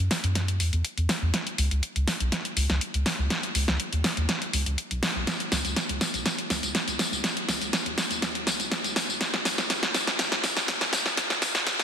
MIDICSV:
0, 0, Header, 1, 3, 480
1, 0, Start_track
1, 0, Tempo, 491803
1, 1306, Time_signature, 4, 2, 24, 8
1, 11551, End_track
2, 0, Start_track
2, 0, Title_t, "Analog synth bass"
2, 0, Program_c, 0, 38
2, 231, Note_on_c, 0, 42, 79
2, 584, Note_on_c, 0, 40, 89
2, 598, Note_off_c, 0, 42, 0
2, 688, Note_off_c, 0, 40, 0
2, 711, Note_on_c, 0, 40, 81
2, 805, Note_off_c, 0, 40, 0
2, 951, Note_on_c, 0, 40, 77
2, 1045, Note_off_c, 0, 40, 0
2, 1191, Note_on_c, 0, 40, 79
2, 1285, Note_off_c, 0, 40, 0
2, 1544, Note_on_c, 0, 37, 95
2, 1648, Note_off_c, 0, 37, 0
2, 1669, Note_on_c, 0, 37, 80
2, 1764, Note_off_c, 0, 37, 0
2, 1910, Note_on_c, 0, 37, 77
2, 2004, Note_off_c, 0, 37, 0
2, 2150, Note_on_c, 0, 35, 80
2, 2245, Note_off_c, 0, 35, 0
2, 2502, Note_on_c, 0, 37, 92
2, 2608, Note_off_c, 0, 37, 0
2, 2630, Note_on_c, 0, 37, 81
2, 2724, Note_off_c, 0, 37, 0
2, 2870, Note_on_c, 0, 37, 76
2, 2964, Note_off_c, 0, 37, 0
2, 3110, Note_on_c, 0, 37, 80
2, 3204, Note_off_c, 0, 37, 0
2, 3463, Note_on_c, 0, 37, 97
2, 3568, Note_off_c, 0, 37, 0
2, 3591, Note_on_c, 0, 37, 86
2, 3685, Note_off_c, 0, 37, 0
2, 3831, Note_on_c, 0, 39, 79
2, 3925, Note_off_c, 0, 39, 0
2, 4071, Note_on_c, 0, 39, 80
2, 4165, Note_off_c, 0, 39, 0
2, 4424, Note_on_c, 0, 37, 91
2, 4528, Note_off_c, 0, 37, 0
2, 4550, Note_on_c, 0, 37, 82
2, 4644, Note_off_c, 0, 37, 0
2, 4791, Note_on_c, 0, 35, 75
2, 4885, Note_off_c, 0, 35, 0
2, 5031, Note_on_c, 0, 35, 79
2, 5125, Note_off_c, 0, 35, 0
2, 5384, Note_on_c, 0, 37, 96
2, 5488, Note_off_c, 0, 37, 0
2, 5512, Note_on_c, 0, 37, 83
2, 5605, Note_off_c, 0, 37, 0
2, 5751, Note_on_c, 0, 37, 79
2, 5845, Note_off_c, 0, 37, 0
2, 5990, Note_on_c, 0, 35, 81
2, 6084, Note_off_c, 0, 35, 0
2, 6344, Note_on_c, 0, 37, 89
2, 6448, Note_off_c, 0, 37, 0
2, 6470, Note_on_c, 0, 37, 83
2, 6564, Note_off_c, 0, 37, 0
2, 6710, Note_on_c, 0, 37, 74
2, 6804, Note_off_c, 0, 37, 0
2, 6950, Note_on_c, 0, 37, 81
2, 7044, Note_off_c, 0, 37, 0
2, 7304, Note_on_c, 0, 37, 94
2, 7409, Note_off_c, 0, 37, 0
2, 7431, Note_on_c, 0, 37, 84
2, 7525, Note_off_c, 0, 37, 0
2, 7670, Note_on_c, 0, 39, 82
2, 7764, Note_off_c, 0, 39, 0
2, 7911, Note_on_c, 0, 39, 82
2, 8264, Note_on_c, 0, 37, 95
2, 8279, Note_off_c, 0, 39, 0
2, 8368, Note_off_c, 0, 37, 0
2, 8390, Note_on_c, 0, 37, 85
2, 8484, Note_off_c, 0, 37, 0
2, 8631, Note_on_c, 0, 37, 79
2, 8725, Note_off_c, 0, 37, 0
2, 8870, Note_on_c, 0, 37, 82
2, 8964, Note_off_c, 0, 37, 0
2, 9225, Note_on_c, 0, 35, 94
2, 9329, Note_off_c, 0, 35, 0
2, 9350, Note_on_c, 0, 35, 83
2, 9445, Note_off_c, 0, 35, 0
2, 9590, Note_on_c, 0, 35, 78
2, 9684, Note_off_c, 0, 35, 0
2, 9829, Note_on_c, 0, 33, 81
2, 9924, Note_off_c, 0, 33, 0
2, 10184, Note_on_c, 0, 35, 90
2, 10289, Note_off_c, 0, 35, 0
2, 10310, Note_on_c, 0, 35, 81
2, 10404, Note_off_c, 0, 35, 0
2, 10551, Note_on_c, 0, 35, 73
2, 10645, Note_off_c, 0, 35, 0
2, 10790, Note_on_c, 0, 35, 84
2, 10885, Note_off_c, 0, 35, 0
2, 11145, Note_on_c, 0, 35, 96
2, 11249, Note_off_c, 0, 35, 0
2, 11272, Note_on_c, 0, 35, 87
2, 11365, Note_off_c, 0, 35, 0
2, 11511, Note_on_c, 0, 37, 81
2, 11551, Note_off_c, 0, 37, 0
2, 11551, End_track
3, 0, Start_track
3, 0, Title_t, "Drums"
3, 105, Note_on_c, 9, 38, 54
3, 105, Note_on_c, 9, 46, 94
3, 203, Note_off_c, 9, 38, 0
3, 203, Note_off_c, 9, 46, 0
3, 232, Note_on_c, 9, 42, 37
3, 330, Note_off_c, 9, 42, 0
3, 346, Note_on_c, 9, 38, 55
3, 346, Note_on_c, 9, 42, 92
3, 443, Note_off_c, 9, 38, 0
3, 443, Note_off_c, 9, 42, 0
3, 472, Note_on_c, 9, 42, 40
3, 570, Note_off_c, 9, 42, 0
3, 586, Note_on_c, 9, 46, 105
3, 683, Note_off_c, 9, 46, 0
3, 712, Note_on_c, 9, 42, 40
3, 809, Note_off_c, 9, 42, 0
3, 825, Note_on_c, 9, 42, 94
3, 923, Note_off_c, 9, 42, 0
3, 952, Note_on_c, 9, 42, 39
3, 1050, Note_off_c, 9, 42, 0
3, 1065, Note_on_c, 9, 38, 59
3, 1065, Note_on_c, 9, 46, 94
3, 1163, Note_off_c, 9, 38, 0
3, 1163, Note_off_c, 9, 46, 0
3, 1305, Note_on_c, 9, 38, 59
3, 1305, Note_on_c, 9, 42, 89
3, 1403, Note_off_c, 9, 38, 0
3, 1403, Note_off_c, 9, 42, 0
3, 1432, Note_on_c, 9, 42, 37
3, 1529, Note_off_c, 9, 42, 0
3, 1546, Note_on_c, 9, 46, 108
3, 1643, Note_off_c, 9, 46, 0
3, 1672, Note_on_c, 9, 42, 38
3, 1770, Note_off_c, 9, 42, 0
3, 1785, Note_on_c, 9, 42, 89
3, 1882, Note_off_c, 9, 42, 0
3, 1912, Note_on_c, 9, 42, 39
3, 2010, Note_off_c, 9, 42, 0
3, 2025, Note_on_c, 9, 38, 62
3, 2025, Note_on_c, 9, 46, 91
3, 2123, Note_off_c, 9, 38, 0
3, 2123, Note_off_c, 9, 46, 0
3, 2152, Note_on_c, 9, 42, 37
3, 2249, Note_off_c, 9, 42, 0
3, 2266, Note_on_c, 9, 38, 62
3, 2266, Note_on_c, 9, 42, 91
3, 2363, Note_off_c, 9, 38, 0
3, 2363, Note_off_c, 9, 42, 0
3, 2392, Note_on_c, 9, 42, 39
3, 2490, Note_off_c, 9, 42, 0
3, 2506, Note_on_c, 9, 46, 105
3, 2603, Note_off_c, 9, 46, 0
3, 2632, Note_on_c, 9, 38, 56
3, 2632, Note_on_c, 9, 42, 37
3, 2729, Note_off_c, 9, 38, 0
3, 2729, Note_off_c, 9, 42, 0
3, 2745, Note_on_c, 9, 42, 89
3, 2843, Note_off_c, 9, 42, 0
3, 2872, Note_on_c, 9, 42, 37
3, 2969, Note_off_c, 9, 42, 0
3, 2985, Note_on_c, 9, 38, 66
3, 2985, Note_on_c, 9, 46, 96
3, 3083, Note_off_c, 9, 38, 0
3, 3083, Note_off_c, 9, 46, 0
3, 3225, Note_on_c, 9, 38, 67
3, 3225, Note_on_c, 9, 42, 89
3, 3322, Note_off_c, 9, 38, 0
3, 3322, Note_off_c, 9, 42, 0
3, 3351, Note_on_c, 9, 42, 37
3, 3449, Note_off_c, 9, 42, 0
3, 3465, Note_on_c, 9, 46, 107
3, 3562, Note_off_c, 9, 46, 0
3, 3592, Note_on_c, 9, 38, 58
3, 3592, Note_on_c, 9, 42, 38
3, 3690, Note_off_c, 9, 38, 0
3, 3690, Note_off_c, 9, 42, 0
3, 3705, Note_on_c, 9, 42, 87
3, 3803, Note_off_c, 9, 42, 0
3, 3831, Note_on_c, 9, 42, 37
3, 3929, Note_off_c, 9, 42, 0
3, 3945, Note_on_c, 9, 38, 69
3, 3945, Note_on_c, 9, 46, 91
3, 4043, Note_off_c, 9, 38, 0
3, 4043, Note_off_c, 9, 46, 0
3, 4071, Note_on_c, 9, 42, 36
3, 4169, Note_off_c, 9, 42, 0
3, 4185, Note_on_c, 9, 38, 68
3, 4185, Note_on_c, 9, 42, 89
3, 4283, Note_off_c, 9, 38, 0
3, 4283, Note_off_c, 9, 42, 0
3, 4311, Note_on_c, 9, 42, 39
3, 4409, Note_off_c, 9, 42, 0
3, 4425, Note_on_c, 9, 46, 99
3, 4523, Note_off_c, 9, 46, 0
3, 4552, Note_on_c, 9, 42, 37
3, 4649, Note_off_c, 9, 42, 0
3, 4665, Note_on_c, 9, 42, 89
3, 4763, Note_off_c, 9, 42, 0
3, 4792, Note_on_c, 9, 42, 37
3, 4889, Note_off_c, 9, 42, 0
3, 4906, Note_on_c, 9, 38, 74
3, 4906, Note_on_c, 9, 46, 93
3, 5003, Note_off_c, 9, 38, 0
3, 5003, Note_off_c, 9, 46, 0
3, 5146, Note_on_c, 9, 38, 75
3, 5146, Note_on_c, 9, 42, 89
3, 5153, Note_on_c, 9, 54, 46
3, 5244, Note_off_c, 9, 38, 0
3, 5244, Note_off_c, 9, 42, 0
3, 5251, Note_off_c, 9, 54, 0
3, 5272, Note_on_c, 9, 42, 38
3, 5370, Note_off_c, 9, 42, 0
3, 5386, Note_on_c, 9, 38, 74
3, 5386, Note_on_c, 9, 46, 106
3, 5393, Note_on_c, 9, 54, 80
3, 5483, Note_off_c, 9, 38, 0
3, 5483, Note_off_c, 9, 46, 0
3, 5491, Note_off_c, 9, 54, 0
3, 5511, Note_on_c, 9, 42, 38
3, 5519, Note_on_c, 9, 54, 33
3, 5609, Note_off_c, 9, 42, 0
3, 5616, Note_off_c, 9, 54, 0
3, 5626, Note_on_c, 9, 38, 78
3, 5626, Note_on_c, 9, 42, 88
3, 5633, Note_on_c, 9, 54, 45
3, 5724, Note_off_c, 9, 38, 0
3, 5724, Note_off_c, 9, 42, 0
3, 5731, Note_off_c, 9, 54, 0
3, 5753, Note_on_c, 9, 42, 37
3, 5850, Note_off_c, 9, 42, 0
3, 5866, Note_on_c, 9, 38, 77
3, 5866, Note_on_c, 9, 46, 93
3, 5873, Note_on_c, 9, 54, 78
3, 5964, Note_off_c, 9, 38, 0
3, 5964, Note_off_c, 9, 46, 0
3, 5971, Note_off_c, 9, 54, 0
3, 5993, Note_on_c, 9, 42, 37
3, 6000, Note_on_c, 9, 54, 33
3, 6090, Note_off_c, 9, 42, 0
3, 6098, Note_off_c, 9, 54, 0
3, 6106, Note_on_c, 9, 38, 76
3, 6106, Note_on_c, 9, 42, 89
3, 6114, Note_on_c, 9, 54, 46
3, 6204, Note_off_c, 9, 38, 0
3, 6204, Note_off_c, 9, 42, 0
3, 6211, Note_off_c, 9, 54, 0
3, 6232, Note_on_c, 9, 42, 39
3, 6329, Note_off_c, 9, 42, 0
3, 6346, Note_on_c, 9, 38, 76
3, 6346, Note_on_c, 9, 46, 101
3, 6353, Note_on_c, 9, 54, 76
3, 6444, Note_off_c, 9, 38, 0
3, 6444, Note_off_c, 9, 46, 0
3, 6451, Note_off_c, 9, 54, 0
3, 6472, Note_on_c, 9, 42, 39
3, 6479, Note_on_c, 9, 54, 34
3, 6570, Note_off_c, 9, 42, 0
3, 6577, Note_off_c, 9, 54, 0
3, 6586, Note_on_c, 9, 38, 80
3, 6586, Note_on_c, 9, 42, 88
3, 6593, Note_on_c, 9, 54, 47
3, 6683, Note_off_c, 9, 38, 0
3, 6683, Note_off_c, 9, 42, 0
3, 6691, Note_off_c, 9, 54, 0
3, 6711, Note_on_c, 9, 42, 37
3, 6719, Note_on_c, 9, 54, 31
3, 6809, Note_off_c, 9, 42, 0
3, 6816, Note_off_c, 9, 54, 0
3, 6825, Note_on_c, 9, 38, 81
3, 6825, Note_on_c, 9, 46, 95
3, 6832, Note_on_c, 9, 54, 79
3, 6922, Note_off_c, 9, 38, 0
3, 6922, Note_off_c, 9, 46, 0
3, 6930, Note_off_c, 9, 54, 0
3, 6958, Note_on_c, 9, 54, 34
3, 7056, Note_off_c, 9, 54, 0
3, 7066, Note_on_c, 9, 38, 84
3, 7066, Note_on_c, 9, 42, 91
3, 7073, Note_on_c, 9, 54, 47
3, 7163, Note_off_c, 9, 38, 0
3, 7163, Note_off_c, 9, 42, 0
3, 7171, Note_off_c, 9, 54, 0
3, 7192, Note_on_c, 9, 42, 40
3, 7289, Note_off_c, 9, 42, 0
3, 7306, Note_on_c, 9, 38, 83
3, 7306, Note_on_c, 9, 46, 105
3, 7313, Note_on_c, 9, 54, 80
3, 7403, Note_off_c, 9, 38, 0
3, 7403, Note_off_c, 9, 46, 0
3, 7411, Note_off_c, 9, 54, 0
3, 7433, Note_on_c, 9, 42, 39
3, 7440, Note_on_c, 9, 54, 37
3, 7530, Note_off_c, 9, 42, 0
3, 7538, Note_off_c, 9, 54, 0
3, 7546, Note_on_c, 9, 38, 88
3, 7546, Note_on_c, 9, 42, 93
3, 7553, Note_on_c, 9, 54, 47
3, 7644, Note_off_c, 9, 38, 0
3, 7644, Note_off_c, 9, 42, 0
3, 7651, Note_off_c, 9, 54, 0
3, 7673, Note_on_c, 9, 42, 39
3, 7771, Note_off_c, 9, 42, 0
3, 7785, Note_on_c, 9, 38, 84
3, 7785, Note_on_c, 9, 46, 87
3, 7793, Note_on_c, 9, 54, 80
3, 7883, Note_off_c, 9, 38, 0
3, 7883, Note_off_c, 9, 46, 0
3, 7890, Note_off_c, 9, 54, 0
3, 7912, Note_on_c, 9, 42, 38
3, 7919, Note_on_c, 9, 54, 33
3, 8009, Note_off_c, 9, 42, 0
3, 8017, Note_off_c, 9, 54, 0
3, 8026, Note_on_c, 9, 38, 87
3, 8026, Note_on_c, 9, 42, 93
3, 8033, Note_on_c, 9, 54, 49
3, 8123, Note_off_c, 9, 38, 0
3, 8123, Note_off_c, 9, 42, 0
3, 8131, Note_off_c, 9, 54, 0
3, 8152, Note_on_c, 9, 42, 40
3, 8250, Note_off_c, 9, 42, 0
3, 8265, Note_on_c, 9, 38, 81
3, 8265, Note_on_c, 9, 46, 101
3, 8273, Note_on_c, 9, 54, 81
3, 8363, Note_off_c, 9, 38, 0
3, 8363, Note_off_c, 9, 46, 0
3, 8370, Note_off_c, 9, 54, 0
3, 8391, Note_on_c, 9, 42, 38
3, 8399, Note_on_c, 9, 54, 35
3, 8489, Note_off_c, 9, 42, 0
3, 8496, Note_off_c, 9, 54, 0
3, 8506, Note_on_c, 9, 38, 91
3, 8506, Note_on_c, 9, 42, 93
3, 8513, Note_on_c, 9, 54, 46
3, 8604, Note_off_c, 9, 38, 0
3, 8604, Note_off_c, 9, 42, 0
3, 8611, Note_off_c, 9, 54, 0
3, 8632, Note_on_c, 9, 42, 40
3, 8639, Note_on_c, 9, 54, 34
3, 8730, Note_off_c, 9, 42, 0
3, 8737, Note_off_c, 9, 54, 0
3, 8746, Note_on_c, 9, 38, 94
3, 8746, Note_on_c, 9, 46, 88
3, 8753, Note_on_c, 9, 54, 83
3, 8843, Note_off_c, 9, 38, 0
3, 8843, Note_off_c, 9, 46, 0
3, 8851, Note_off_c, 9, 54, 0
3, 8879, Note_on_c, 9, 54, 36
3, 8977, Note_off_c, 9, 54, 0
3, 8986, Note_on_c, 9, 38, 90
3, 8986, Note_on_c, 9, 42, 98
3, 8994, Note_on_c, 9, 54, 48
3, 9084, Note_off_c, 9, 38, 0
3, 9084, Note_off_c, 9, 42, 0
3, 9091, Note_off_c, 9, 54, 0
3, 9113, Note_on_c, 9, 38, 81
3, 9113, Note_on_c, 9, 42, 39
3, 9210, Note_off_c, 9, 38, 0
3, 9210, Note_off_c, 9, 42, 0
3, 9226, Note_on_c, 9, 38, 95
3, 9226, Note_on_c, 9, 46, 106
3, 9234, Note_on_c, 9, 54, 82
3, 9324, Note_off_c, 9, 38, 0
3, 9324, Note_off_c, 9, 46, 0
3, 9331, Note_off_c, 9, 54, 0
3, 9352, Note_on_c, 9, 38, 84
3, 9352, Note_on_c, 9, 42, 41
3, 9360, Note_on_c, 9, 54, 38
3, 9450, Note_off_c, 9, 38, 0
3, 9450, Note_off_c, 9, 42, 0
3, 9457, Note_off_c, 9, 54, 0
3, 9467, Note_on_c, 9, 38, 95
3, 9467, Note_on_c, 9, 42, 96
3, 9474, Note_on_c, 9, 54, 48
3, 9564, Note_off_c, 9, 38, 0
3, 9564, Note_off_c, 9, 42, 0
3, 9572, Note_off_c, 9, 54, 0
3, 9592, Note_on_c, 9, 38, 85
3, 9592, Note_on_c, 9, 42, 42
3, 9690, Note_off_c, 9, 38, 0
3, 9690, Note_off_c, 9, 42, 0
3, 9706, Note_on_c, 9, 38, 95
3, 9706, Note_on_c, 9, 46, 89
3, 9713, Note_on_c, 9, 54, 82
3, 9804, Note_off_c, 9, 38, 0
3, 9804, Note_off_c, 9, 46, 0
3, 9811, Note_off_c, 9, 54, 0
3, 9832, Note_on_c, 9, 38, 82
3, 9832, Note_on_c, 9, 42, 41
3, 9840, Note_on_c, 9, 54, 35
3, 9930, Note_off_c, 9, 38, 0
3, 9930, Note_off_c, 9, 42, 0
3, 9937, Note_off_c, 9, 54, 0
3, 9946, Note_on_c, 9, 38, 99
3, 9946, Note_on_c, 9, 42, 98
3, 9953, Note_on_c, 9, 54, 49
3, 10044, Note_off_c, 9, 38, 0
3, 10044, Note_off_c, 9, 42, 0
3, 10051, Note_off_c, 9, 54, 0
3, 10071, Note_on_c, 9, 38, 88
3, 10071, Note_on_c, 9, 42, 43
3, 10169, Note_off_c, 9, 38, 0
3, 10169, Note_off_c, 9, 42, 0
3, 10186, Note_on_c, 9, 38, 93
3, 10186, Note_on_c, 9, 46, 95
3, 10193, Note_on_c, 9, 54, 81
3, 10283, Note_off_c, 9, 38, 0
3, 10283, Note_off_c, 9, 46, 0
3, 10290, Note_off_c, 9, 54, 0
3, 10312, Note_on_c, 9, 38, 85
3, 10312, Note_on_c, 9, 42, 41
3, 10320, Note_on_c, 9, 54, 37
3, 10410, Note_off_c, 9, 38, 0
3, 10410, Note_off_c, 9, 42, 0
3, 10417, Note_off_c, 9, 54, 0
3, 10425, Note_on_c, 9, 38, 100
3, 10425, Note_on_c, 9, 42, 95
3, 10433, Note_on_c, 9, 54, 50
3, 10523, Note_off_c, 9, 38, 0
3, 10523, Note_off_c, 9, 42, 0
3, 10530, Note_off_c, 9, 54, 0
3, 10552, Note_on_c, 9, 38, 91
3, 10552, Note_on_c, 9, 42, 42
3, 10559, Note_on_c, 9, 54, 33
3, 10650, Note_off_c, 9, 38, 0
3, 10650, Note_off_c, 9, 42, 0
3, 10657, Note_off_c, 9, 54, 0
3, 10665, Note_on_c, 9, 38, 104
3, 10665, Note_on_c, 9, 46, 92
3, 10672, Note_on_c, 9, 54, 83
3, 10763, Note_off_c, 9, 38, 0
3, 10763, Note_off_c, 9, 46, 0
3, 10770, Note_off_c, 9, 54, 0
3, 10792, Note_on_c, 9, 38, 92
3, 10799, Note_on_c, 9, 54, 36
3, 10889, Note_off_c, 9, 38, 0
3, 10897, Note_off_c, 9, 54, 0
3, 10906, Note_on_c, 9, 38, 107
3, 10906, Note_on_c, 9, 42, 100
3, 10913, Note_on_c, 9, 54, 49
3, 11003, Note_off_c, 9, 38, 0
3, 11003, Note_off_c, 9, 42, 0
3, 11010, Note_off_c, 9, 54, 0
3, 11031, Note_on_c, 9, 38, 92
3, 11031, Note_on_c, 9, 42, 43
3, 11039, Note_on_c, 9, 54, 32
3, 11129, Note_off_c, 9, 38, 0
3, 11129, Note_off_c, 9, 42, 0
3, 11136, Note_off_c, 9, 54, 0
3, 11145, Note_on_c, 9, 38, 104
3, 11145, Note_on_c, 9, 46, 101
3, 11153, Note_on_c, 9, 54, 85
3, 11243, Note_off_c, 9, 38, 0
3, 11243, Note_off_c, 9, 46, 0
3, 11250, Note_off_c, 9, 54, 0
3, 11271, Note_on_c, 9, 38, 91
3, 11271, Note_on_c, 9, 42, 44
3, 11279, Note_on_c, 9, 54, 36
3, 11369, Note_off_c, 9, 38, 0
3, 11369, Note_off_c, 9, 42, 0
3, 11376, Note_off_c, 9, 54, 0
3, 11386, Note_on_c, 9, 38, 107
3, 11386, Note_on_c, 9, 42, 96
3, 11393, Note_on_c, 9, 54, 47
3, 11484, Note_off_c, 9, 38, 0
3, 11484, Note_off_c, 9, 42, 0
3, 11491, Note_off_c, 9, 54, 0
3, 11511, Note_on_c, 9, 38, 96
3, 11511, Note_on_c, 9, 42, 44
3, 11519, Note_on_c, 9, 54, 35
3, 11551, Note_off_c, 9, 38, 0
3, 11551, Note_off_c, 9, 42, 0
3, 11551, Note_off_c, 9, 54, 0
3, 11551, End_track
0, 0, End_of_file